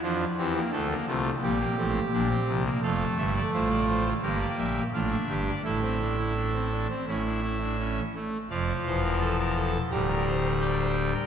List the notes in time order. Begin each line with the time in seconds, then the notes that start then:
0.02 F2 F3 D4 F4
0.38 E2 E3 C4 G4
0.55 A#3
0.72 D2 D3 A3 A4
0.90 A#3
1.07 C2 C3 A3 F4
1.42 A#1 A#2 G3 G4
1.59 A#3
1.77 A1 A2 C4
2.12 A#1 A#2 D4
2.29 C4
2.48 C2 C3
2.65 A#3
2.83 F1 F2 A3 A4 F5
3.18 G1 G2 E5
3.36 D5
3.53 A1 A2 F4 C5
3.70 D5
3.88 C5
4.22 G1 G2 A#3 G4 A#4
4.40 D5
4.58 A#1 A#2 E5
4.93 A1 A2 D4 F4 F5
5.10 E5
5.28 G1 G2 G4
5.46 D5
5.64 A1 A2 E4 A4 E5
5.82 C4
6.01 D4
6.18 E4
6.36 D4
6.54 C4
6.72 D4
6.89 C4
7.08 A1 A2 C#4 E4 E5
7.25 D4
7.43 E4
7.61 D4
7.79 C#4
8.15 A3
8.50 F1 F2 F3 D5 F5
8.86 E1 E2 C5
9.03 A#4
9.21 A4 A5
9.39 A#4
9.56 A4
9.91 D1 D2 G3 G4 A#5
10.09 A#4
10.27 C5
10.61 D5 G5
10.79 C5
11.14 A#4